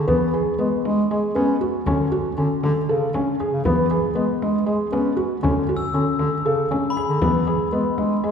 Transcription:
0.08 bass clarinet E3, felt piano B3, frame drum
0.20 bass clarinet E3
0.34 felt piano G#4
0.59 bass clarinet G#3, felt piano B3
0.85 bass clarinet G#3, frame drum
1.10 bass clarinet G#3, felt piano G#4
1.35 felt piano B3, bass clarinet C#4, frame drum
1.61 felt piano F#4, frame drum
1.86 bass clarinet D3, felt piano C#4, frame drum
1.99 bass clarinet D3
2.12 felt piano F#4
2.38 bass clarinet D3, felt piano C#4
2.63 bass clarinet D3, frame drum
2.88 bass clarinet C#3, felt piano A4
3.14 felt piano C#4, frame drum
3.40 felt piano G#4, frame drum
3.53 bass clarinet C#3
3.65 bass clarinet E3, felt piano B3, frame drum
3.78 bass clarinet E3
3.90 felt piano G#4
4.15 bass clarinet G#3, felt piano B3
4.41 bass clarinet G#3, frame drum
4.66 bass clarinet G#3, felt piano G#4
4.92 felt piano B3, bass clarinet C#4, frame drum
5.17 felt piano F#4, frame drum
5.42 bass clarinet D3, felt piano C#4, frame drum
5.56 bass clarinet D3
5.69 felt piano F#4
5.77 glockenspiel E6
5.94 bass clarinet D3, felt piano C#4
6.19 bass clarinet D3, frame drum
6.45 bass clarinet C#3, felt piano A4
6.71 felt piano C#4, frame drum
6.90 glockenspiel B5
6.97 felt piano G#4, frame drum
7.09 bass clarinet D3
7.22 bass clarinet E3, felt piano B3, frame drum
7.34 bass clarinet E3
7.47 felt piano G#4
7.72 bass clarinet G#3, felt piano B3
7.98 bass clarinet G#3, frame drum
8.23 bass clarinet G#3, felt piano G#4

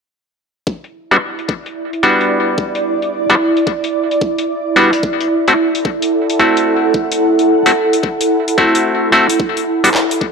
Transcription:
0.66 ambient pad E4, kick
0.84 closed hi-hat
0.99 ambient pad D5
1.11 clav G3 B3 D4 F#4, closed hi-hat
1.39 closed hi-hat
1.49 kick
1.66 closed hi-hat
1.93 closed hi-hat
2.03 clav G3 B3 D4 F#4
2.21 closed hi-hat
2.58 kick
2.75 closed hi-hat
3.02 closed hi-hat
3.30 clav G3 B3 D4 F#4, closed hi-hat
3.57 closed hi-hat
3.67 kick
3.84 closed hi-hat
4.11 closed hi-hat
4.21 kick
4.38 closed hi-hat
4.76 clav G3 B3 D4 F#4
4.93 closed hi-hat
5.03 kick
5.21 ambient pad A4, closed hi-hat
5.48 clav A3 C4 E4 F#4, closed hi-hat
5.55 ambient pad F#5
5.75 closed hi-hat
5.85 kick
6.02 closed hi-hat
6.30 closed hi-hat
6.40 clav A3 C4 E4 F#4
6.57 closed hi-hat
6.94 kick
7.12 closed hi-hat
7.39 closed hi-hat
7.66 clav A3 C4 E4 F#4, closed hi-hat
7.93 closed hi-hat
8.03 kick
8.21 closed hi-hat
8.48 closed hi-hat
8.58 clav A3 C4 E4 F#4, kick
8.75 closed hi-hat
9.12 clav A3 C4 E4 F#4
9.30 closed hi-hat
9.40 kick
9.57 closed hi-hat
9.69 ambient pad D5
9.84 clav G3 B3 D4 F#4, closed hi-hat
9.94 clap
10.11 closed hi-hat
10.21 kick

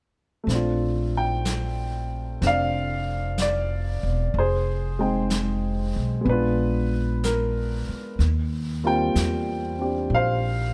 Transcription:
0.44 upright bass A#1, grand piano A3
0.48 grand piano C4 D4, brush sweep, snare
0.55 grand piano F4
1.17 grand piano G5
1.45 brush sweep, snare, hi-hat pedal
2.41 upright bass F1, grand piano C4 D4, brush sweep, snare
2.47 grand piano D5 F5
3.38 brush sweep, snare, hi-hat pedal
3.42 grand piano D5
4.03 upright bass E1
4.34 upright bass F1, brush sweep
4.38 grand piano G#4 C5
4.99 grand piano G#3 C4 D#4 G5
5.30 brush sweep, snare, hi-hat pedal
5.96 upright bass B1
6.21 grand piano G#3 B3
6.25 upright bass A#1, grand piano D4, brush sweep
6.29 grand piano F4 B4
7.24 grand piano A#4, brush sweep, snare, hi-hat pedal
7.88 muted upright bass stroke
8.19 upright bass D#2, brush sweep, snare
8.84 grand piano G3 A#3 C4 F4 G5
9.15 upright bass E2, brush sweep, snare, hi-hat pedal
9.79 grand piano C4 D4 G4
10.10 upright bass A#1, brush sweep
10.14 grand piano C5 F5

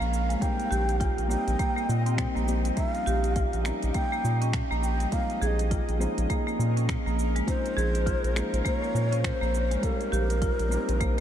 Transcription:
Already playing: felt piano F3 G#3 C#4 D#4 C5, synth drone A#4 F5, ney F5
0.00 analog synth bass A#1, marimba A#3, shaker
0.13 shaker
0.29 marimba G#3, closed hi-hat, shaker
0.40 felt piano G3 A#3 C4 D#4, marimba A#3, synth drone C4 A#4 D#5, ney G5, kick, closed hi-hat, shaker
0.44 felt piano G4
0.60 closed hi-hat, shaker
0.71 analog synth bass A#1, marimba G4, shaker
0.89 closed hi-hat, shaker
1.00 marimba F4, kick, closed hi-hat, shaker
1.18 analog synth bass A#1, closed hi-hat, shaker
1.28 felt piano G3 A#3 C4 D#4, marimba A#3, ney G5, shaker
1.32 felt piano G4
1.47 analog synth bass A#1, closed hi-hat, shaker
1.59 marimba A#3, kick, closed hi-hat, shaker
1.77 marimba A#3, shaker
1.89 analog synth bass A#2, shaker
2.06 marimba C4, closed hi-hat, shaker
2.17 felt piano G3 A#3 C4 D#4 C5, finger snap, kick, closed hi-hat, shaker
2.36 analog synth bass A#1, marimba A#3, shaker
2.47 felt piano G3 A#3 C4 D#4 G4, shaker
2.65 marimba G3, closed hi-hat, shaker
2.75 felt piano F3 G3 A#3 C#4, marimba A#3, synth drone G4 D#5, ney E5, kick, closed hi-hat, shaker
2.79 felt piano D#4
2.90 ney F5
2.95 closed hi-hat, shaker
3.06 analog synth bass A#1, marimba G4, shaker
3.24 closed hi-hat, shaker
3.36 marimba F4, kick, closed hi-hat, shaker
3.53 analog synth bass A#1, closed hi-hat, shaker
3.63 felt piano F3 G3 A#3 C#4, marimba A#3, finger snap, shaker
3.67 felt piano D#4
3.83 analog synth bass A#1, closed hi-hat, shaker
3.94 marimba A#3, ney G5, kick, closed hi-hat, shaker
4.12 marimba A#3, shaker
4.24 analog synth bass A#2, shaker
4.41 marimba C#4, closed hi-hat, shaker
4.53 finger snap, kick, closed hi-hat, shaker
4.71 analog synth bass A#1, marimba A#3, shaker
4.83 ney G5, shaker
5.00 marimba G3, closed hi-hat, shaker
5.10 felt piano F3 G#3 C4 C#4 D#4, marimba A#3, synth drone G#4 A#4, ney F5, kick, closed hi-hat, shaker
5.30 closed hi-hat, shaker
5.42 analog synth bass A#1, marimba G#4, ney F5, shaker
5.47 ney D#5
5.59 closed hi-hat, shaker
5.71 marimba F4, kick, closed hi-hat, shaker
5.89 analog synth bass A#1, closed hi-hat, shaker
5.98 felt piano F3 G#3 C#4 D#4 C5, marimba A#3, shaker
6.18 analog synth bass A#1, closed hi-hat, shaker
6.30 marimba A#3, kick, closed hi-hat, shaker
6.47 marimba A#3, shaker
6.59 analog synth bass A#2, shaker
6.77 marimba C#4, closed hi-hat, shaker
6.89 finger snap, kick, closed hi-hat, shaker
7.06 analog synth bass A#1, marimba A#3, shaker
7.19 shaker
7.36 marimba G#3, closed hi-hat, shaker
7.45 felt piano F3 G#3 C4 C#4, marimba A#3, ney C5, synth drone F5, kick, closed hi-hat, shaker
7.50 felt piano D#4
7.66 closed hi-hat, shaker
7.77 analog synth bass A#1, marimba G#4, shaker
7.95 closed hi-hat, shaker
8.06 marimba F4, kick, closed hi-hat, shaker
8.24 analog synth bass A#1, closed hi-hat, shaker
8.34 felt piano F3 G#3 C#4 D#4 G#4, marimba A#3, finger snap, shaker
8.53 analog synth bass A#1, closed hi-hat, shaker
8.65 marimba A#3, ney C5, kick, closed hi-hat, shaker
8.78 ney C#5
8.82 marimba A#3, shaker
8.94 analog synth bass A#2, shaker
9.12 marimba C#4, closed hi-hat, shaker
9.24 ney C5, finger snap, kick, closed hi-hat, shaker
9.41 analog synth bass A#1, marimba A#3, shaker
9.55 shaker
9.71 marimba G#3, closed hi-hat, shaker
9.81 felt piano G3 A#3 C4 D#4 G4, marimba A#3, synth drone C4 A#4 D#5, ney A#4, kick, closed hi-hat, shaker
10.01 closed hi-hat, shaker
10.12 analog synth bass A#1, marimba G4, shaker
10.30 closed hi-hat, shaker
10.42 marimba F4, kick, closed hi-hat, shaker
10.59 analog synth bass A#1, closed hi-hat, shaker
10.69 felt piano G3 A#3 C4 D#4 G4, marimba A#3, shaker
10.89 analog synth bass A#1, closed hi-hat, shaker
11.00 marimba A#3, kick, closed hi-hat, shaker

